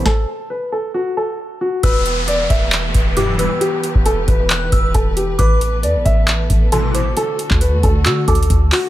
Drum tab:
HH |------------------------------------------------|x-----x-----x-----x-----x-----x-----x-----x-----|x-----x-----x-----x-----x-----x-----x-----x-----|x-----x-----x-----x-----x-----x-----x-----x-----|
CP |------------------------------------------------|------------------------x-----------------------|------------------------x-----------------------|------------------------x-----------------------|
SD |o-----------------------------------------------|------------------------------------------------|------------------------------------------------|------------------------------------------------|
BD |o-----------------------------------------------|o-----------------o-----------o-----------------|---------o--------o-----------o-----o-----------|o-----------------o-----------o-----------------|

HH |x-----x-----x-----x-----x-----x-x-x-x-----o-----|
CP |---------x--------------x-----------------x-----|
SD |------------------------------------------------|
BD |---------o--------o-----------o-----o-----------|